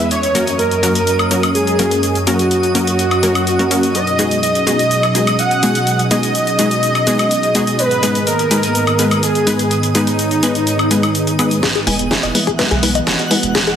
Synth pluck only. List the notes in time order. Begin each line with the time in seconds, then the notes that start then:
0.35 F#3 A#3 C#4 F#4 A#4
0.83 F#3 A#3 C#4 F#4 A#4
1.31 F#3 A#3 C#4 F#4 A#4
1.79 F#3 A#3 C#4 F#4 A#4
2.27 F#3 A#3 C#4 F#4 A#4
2.75 F#3 A#3 C#4 F#4 A#4
3.23 F#3 A#3 C#4 F#4 A#4
3.59 F#3 A#3 C#4 F#4 A#4
3.71 F#3 A#3 C#4 F#4 A#4
4.19 G#3 B3 D#4 F#4 G#4
4.67 G#3 B3 D#4 F#4 G#4
5.15 G#3 B3 D#4 F#4 G#4
5.63 G#3 B3 D#4 F#4 G#4
6.11 G#3 B3 D#4 F#4 G#4
6.59 G#3 B3 D#4 F#4 G#4
7.07 G#3 B3 D#4 F#4 G#4
7.55 G#3 B3 D#4 F#4 G#4
8.03 G#3 B3 D#4 G#4 B4
8.51 G#3 B3 D#4 G#4 B4
8.99 G#3 B3 D#4 G#4 B4
9.47 G#3 B3 D#4 G#4 B4
9.95 G#3 B3 D#4 G#4 B4
10.43 G#3 B3 D#4 G#4 B4
10.91 G#3 B3 D#4 G#4 B4
11.39 G#3 B3 D#4 G#4 B4
11.87 G#3 B3 E4 G#4 B4
12.35 G#3 B3 E4 G#4 B4
12.83 G#3 B3 E4 G#4 B4
13.31 G#3 B3 E4 G#4 B4